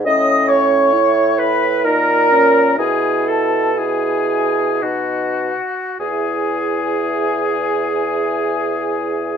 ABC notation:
X:1
M:3/4
L:1/8
Q:1/4=57
K:E
V:1 name="Flute"
d' c'2 b ^a2 | g a g2 f2 | g6 |]
V:2 name="Clarinet"
d c2 B ^A2 | G A G2 F2 | G6 |]
V:3 name="Oboe"
d c2 B ^A2 | G A G2 F2 | G6 |]
V:4 name="French horn"
C2 E2 D C | E2 E2 D z | E6 |]
V:5 name="Bassoon" clef=bass
A,,4 ^A,,2 | B,,4 B,, z | E,,6 |]